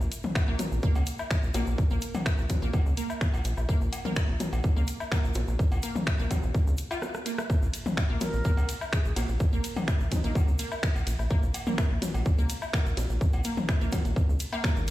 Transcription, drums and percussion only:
0.01 shaker
0.12 closed hi-hat, shaker
0.23 mid tom, shaker
0.35 finger snap, kick, cowbell, low woodblock, shaker
0.59 closed hi-hat, mid tom, high bongo, shaker
0.72 shaker
0.83 kick, shaker
0.95 cowbell, shaker
1.06 closed hi-hat, shaker
1.19 low woodblock, shaker
1.31 finger snap, kick, shaker
1.43 shaker
1.54 closed hi-hat, cowbell, high bongo, shaker
1.67 shaker
1.78 kick, shaker
1.90 shaker
2.02 closed hi-hat, shaker
2.14 mid tom, cowbell, shaker
2.26 finger snap, kick, low woodblock, shaker
2.39 shaker
2.50 kick, closed hi-hat, mid tom, high bongo, shaker
2.62 shaker
2.73 kick, cowbell, shaker
2.86 shaker
2.97 closed hi-hat, shaker
3.10 low woodblock, shaker
3.21 finger snap, kick, shaker
3.34 cowbell, shaker
3.45 closed hi-hat, shaker
3.57 low woodblock, shaker
3.69 kick, shaker
3.81 shaker
3.93 closed hi-hat, cowbell, shaker
4.05 mid tom, shaker
4.16 finger snap, kick, low woodblock, shaker
4.40 closed hi-hat, mid tom, high bongo, shaker
4.53 cowbell, shaker
4.64 kick, shaker
4.77 shaker
4.87 closed hi-hat, shaker
5.00 low woodblock, shaker
5.12 finger snap, kick, cowbell, shaker
5.24 shaker
5.34 closed hi-hat, high bongo, shaker
5.48 shaker
5.59 kick, shaker
5.72 cowbell, shaker
5.83 closed hi-hat, shaker
5.96 mid tom, shaker
6.07 finger snap, kick, low woodblock, shaker
6.20 shaker
6.31 kick, closed hi-hat, mid tom, cowbell, high bongo, shaker
6.43 shaker
6.54 kick, shaker
6.67 shaker
6.77 closed hi-hat, shaker
6.91 cowbell, low woodblock, shaker
7.02 cross-stick, high bongo, shaker
7.14 cross-stick, shaker
7.26 closed hi-hat, shaker
7.38 cross-stick, low woodblock, shaker
7.50 kick, shaker
7.62 shaker
7.74 closed hi-hat, ride, shaker
7.86 mid tom, shaker
7.97 finger snap, kick, cowbell, low woodblock, shaker
8.21 closed hi-hat, mid tom, ride, high bongo, shaker
8.33 shaker
8.45 kick, shaker
8.57 cowbell, shaker
8.69 closed hi-hat, ride, shaker
8.81 low woodblock, shaker
8.93 finger snap, kick, shaker
9.05 shaker
9.16 closed hi-hat, ride, cowbell, high bongo, shaker
9.29 shaker
9.40 kick, shaker
9.53 shaker
9.64 closed hi-hat, ride, shaker
9.76 mid tom, cowbell, shaker
9.88 finger snap, kick, low woodblock, shaker
10.00 shaker
10.12 kick, closed hi-hat, mid tom, ride, high bongo, shaker
10.24 ride, shaker
10.35 kick, cowbell, shaker
10.48 shaker
10.59 closed hi-hat, ride, shaker
10.72 low woodblock, shaker
10.83 finger snap, kick, shaker
10.95 cowbell, shaker
11.07 closed hi-hat, ride, shaker
11.19 low woodblock, shaker
11.30 kick, shaker
11.43 shaker
11.54 closed hi-hat, ride, cowbell, shaker
11.66 mid tom, shaker
11.78 finger snap, kick, low woodblock, shaker
12.02 closed hi-hat, mid tom, ride, high bongo, shaker
12.14 cowbell, shaker
12.25 kick, shaker
12.38 shaker
12.49 closed hi-hat, ride, shaker
12.62 low woodblock, shaker
12.73 finger snap, kick, cowbell, shaker
12.86 shaker
12.97 closed hi-hat, ride, high bongo, shaker
13.10 shaker
13.21 kick, shaker
13.33 cowbell, shaker
13.44 closed hi-hat, ride, shaker
13.57 mid tom, shaker
13.69 finger snap, kick, low woodblock, shaker
13.81 shaker
13.92 kick, closed hi-hat, mid tom, ride, cowbell, high bongo, shaker
14.05 ride, shaker
14.16 kick, shaker
14.29 shaker
14.40 closed hi-hat, ride, shaker
14.53 cowbell, low woodblock, shaker
14.64 finger snap, kick, high bongo, shaker
14.76 shaker

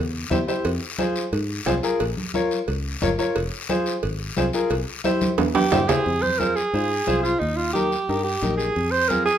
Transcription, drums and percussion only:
0.31 high conga, low conga, short guiro
0.48 short guiro
0.65 cowbell, long guiro
0.98 high conga, short guiro
1.16 short guiro
1.33 cowbell, long guiro
1.66 high conga, low timbale, short guiro
1.83 short guiro
2.00 cowbell, long guiro
2.17 high conga
2.34 high conga, short guiro
2.51 short guiro
2.68 cowbell, long guiro
3.02 high conga, low conga, short guiro
3.19 short guiro
3.36 cowbell, long guiro
3.69 high conga, short guiro
3.86 short guiro
4.03 cowbell, long guiro
4.36 high conga, short guiro
4.53 short guiro
4.70 cowbell, long guiro
5.04 high conga, short guiro
5.21 high conga, short guiro
5.38 cowbell, high conga, high timbale, long guiro
5.55 high conga, high timbale
5.72 low conga, low timbale, short guiro
5.89 low conga, low timbale, short guiro
6.06 long guiro
6.23 high conga
6.40 high conga, short guiro
6.57 short guiro
6.74 long guiro
7.07 high conga, short guiro
7.25 short guiro
7.42 long guiro
7.75 high conga, short guiro
7.92 short guiro
8.09 long guiro
8.43 high conga, short guiro
8.59 short guiro
8.76 long guiro
9.10 high conga, short guiro
9.27 short guiro

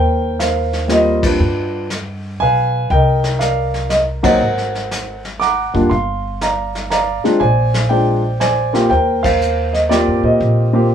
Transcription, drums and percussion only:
0.40 snare, hi-hat pedal
0.73 snare
0.89 snare, hi-hat pedal
1.23 kick, ride
1.40 brush sweep
1.90 snare, hi-hat pedal
2.90 brush sweep, kick
3.24 snare
3.41 snare, hi-hat pedal
3.74 snare
3.90 snare, hi-hat pedal
4.24 kick, ride
4.41 brush sweep
4.58 snare
4.75 snare
4.91 snare, hi-hat pedal
5.25 snare
5.41 snare
5.75 kick
5.91 brush sweep, kick
6.41 snare, hi-hat pedal
6.75 snare
6.91 snare, hi-hat pedal
7.25 snare
7.41 brush sweep, kick
7.74 snare
8.41 snare, hi-hat pedal
8.75 snare
8.91 brush sweep, kick
9.24 kick, ride
9.41 hi-hat pedal
9.74 snare
9.91 snare, hi-hat pedal
10.41 brush sweep, kick

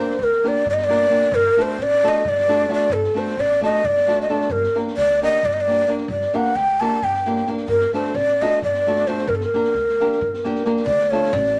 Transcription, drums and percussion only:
0.10 snare
0.20 snare
0.32 snare
0.45 snare
0.55 snare
0.66 kick
0.78 snare
0.90 snare
1.01 snare
1.12 snare
1.22 snare
1.32 kick
1.57 snare
1.67 snare
1.78 snare
1.91 snare
2.04 snare
2.15 snare
2.25 kick
2.38 snare
2.49 snare
2.69 snare
2.79 snare
2.91 kick
3.04 snare
3.16 snare
3.27 snare
3.38 snare
3.51 snare
3.64 snare
3.75 snare
3.85 kick
3.97 snare
4.08 snare
4.20 snare
4.29 snare
4.40 snare
4.50 kick
4.64 snare
4.77 snare
4.87 snare
4.98 snare
5.09 snare
5.22 snare
5.33 snare
5.43 kick
5.55 snare
5.67 snare
5.78 snare
5.87 snare
5.97 snare
6.09 kick
6.21 snare
6.33 snare
6.44 snare
6.55 snare
6.81 snare
6.92 snare
7.03 kick
7.14 snare
7.25 snare
7.36 snare
7.47 snare
7.57 snare
7.68 kick
7.81 snare
7.94 snare
8.05 snare
8.15 snare
8.28 snare
8.41 snare
8.52 snare
8.62 kick
8.74 snare
8.87 snare
8.97 snare
9.07 snare
9.18 snare
9.28 kick
9.40 snare
9.54 snare
9.64 snare
9.75 snare
9.89 snare
10.00 snare
10.12 snare
10.21 kick
10.34 snare
10.44 snare
10.55 snare
10.65 snare
10.76 snare
10.87 kick
11.00 snare
11.12 snare
11.23 snare
11.33 snare
11.46 snare

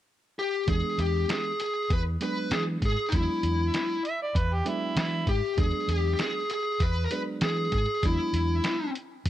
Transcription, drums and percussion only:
0.68 kick, closed hi-hat
0.99 closed hi-hat
1.29 snare, closed hi-hat
1.60 closed hi-hat
1.90 kick, closed hi-hat
2.21 closed hi-hat
2.51 snare, closed hi-hat
2.82 kick, closed hi-hat
3.12 kick, closed hi-hat
3.43 closed hi-hat
3.74 snare, closed hi-hat
4.05 closed hi-hat
4.35 kick, closed hi-hat
4.66 closed hi-hat
4.97 snare, closed hi-hat
5.27 kick, closed hi-hat
5.58 kick, closed hi-hat
5.89 closed hi-hat
6.19 snare, closed hi-hat
6.50 closed hi-hat
6.80 kick, closed hi-hat
7.11 closed hi-hat
7.41 snare, closed hi-hat
7.72 kick, closed hi-hat
8.03 kick, closed hi-hat
8.34 closed hi-hat
8.64 snare, closed hi-hat
8.95 closed hi-hat
9.26 kick, closed hi-hat

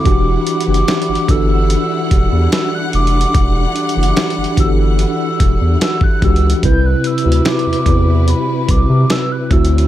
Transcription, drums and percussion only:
0.05 kick, closed hi-hat
0.47 closed hi-hat
0.61 closed hi-hat
0.74 closed hi-hat
0.88 snare, closed hi-hat
1.02 closed hi-hat
1.15 closed hi-hat
1.28 kick, closed hi-hat
1.70 closed hi-hat
2.11 kick, closed hi-hat
2.52 snare, closed hi-hat
2.93 closed hi-hat, open hi-hat
3.07 closed hi-hat
3.21 closed hi-hat
3.34 kick, closed hi-hat
3.76 closed hi-hat
3.89 closed hi-hat
4.03 closed hi-hat
4.17 snare, closed hi-hat
4.30 closed hi-hat
4.44 closed hi-hat
4.57 kick, closed hi-hat
4.99 closed hi-hat
5.40 kick, closed hi-hat
5.81 snare, closed hi-hat
6.01 kick
6.22 kick, closed hi-hat, open hi-hat
6.36 closed hi-hat
6.50 closed hi-hat
6.63 kick, closed hi-hat
7.04 closed hi-hat
7.18 closed hi-hat
7.32 closed hi-hat
7.45 snare, closed hi-hat
7.59 closed hi-hat
7.73 closed hi-hat
7.86 kick, closed hi-hat
8.28 closed hi-hat
8.69 kick, closed hi-hat
9.10 snare, closed hi-hat
9.51 kick, closed hi-hat, open hi-hat
9.65 closed hi-hat
9.78 closed hi-hat

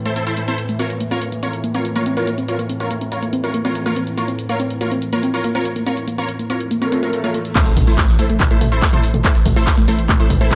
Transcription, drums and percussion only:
0.06 closed hi-hat
0.16 closed hi-hat
0.27 closed hi-hat
0.37 closed hi-hat
0.48 closed hi-hat
0.58 closed hi-hat
0.69 closed hi-hat
0.79 closed hi-hat
0.90 closed hi-hat
1.00 closed hi-hat
1.11 closed hi-hat
1.22 closed hi-hat
1.32 closed hi-hat
1.43 closed hi-hat
1.53 closed hi-hat
1.64 closed hi-hat
1.74 closed hi-hat
1.85 closed hi-hat
1.96 closed hi-hat
2.06 closed hi-hat
2.17 closed hi-hat
2.27 closed hi-hat
2.38 closed hi-hat
2.48 closed hi-hat
2.59 closed hi-hat
2.69 closed hi-hat
2.80 closed hi-hat
2.91 closed hi-hat
3.01 closed hi-hat
3.12 closed hi-hat
3.23 closed hi-hat
3.33 closed hi-hat
3.44 closed hi-hat
3.54 closed hi-hat
3.65 closed hi-hat
3.75 closed hi-hat
3.86 closed hi-hat
3.96 closed hi-hat
4.07 closed hi-hat
4.17 closed hi-hat
4.28 closed hi-hat
4.39 closed hi-hat
4.49 closed hi-hat
4.60 closed hi-hat
4.70 closed hi-hat
4.81 closed hi-hat
4.92 closed hi-hat
5.02 closed hi-hat
5.13 closed hi-hat
5.23 closed hi-hat
5.34 closed hi-hat
5.44 closed hi-hat
5.55 closed hi-hat
5.65 closed hi-hat
5.76 closed hi-hat
5.86 closed hi-hat
5.97 closed hi-hat
6.08 closed hi-hat
6.18 closed hi-hat
6.29 closed hi-hat
6.39 closed hi-hat
6.50 closed hi-hat
6.61 closed hi-hat
6.71 closed hi-hat
6.82 closed hi-hat
6.92 closed hi-hat
7.03 closed hi-hat
7.13 closed hi-hat
7.24 closed hi-hat
7.34 closed hi-hat
7.45 closed hi-hat
7.55 kick, clap, closed hi-hat, crash, shaker
7.66 closed hi-hat
7.77 kick, mid tom, open hi-hat, shaker
7.87 snare, closed hi-hat
7.98 kick, snare, clap, closed hi-hat, shaker
8.08 snare, closed hi-hat
8.18 open hi-hat, shaker
8.30 closed hi-hat
8.40 kick, clap, closed hi-hat, mid tom, shaker
8.51 closed hi-hat
8.61 mid tom, open hi-hat, shaker
8.72 closed hi-hat
8.82 kick, snare, clap, closed hi-hat, shaker
8.93 closed hi-hat, mid tom
9.03 open hi-hat, shaker
9.14 closed hi-hat, mid tom
9.24 kick, clap, closed hi-hat, shaker
9.35 snare, closed hi-hat
9.46 kick, mid tom, open hi-hat
9.56 snare, closed hi-hat
9.67 kick, snare, clap, closed hi-hat, shaker
9.77 snare, closed hi-hat
9.88 open hi-hat, shaker
9.99 closed hi-hat
10.09 kick, clap, closed hi-hat, mid tom, shaker
10.20 closed hi-hat
10.30 kick, mid tom, open hi-hat, shaker
10.41 closed hi-hat
10.51 kick, snare, clap, closed hi-hat, shaker

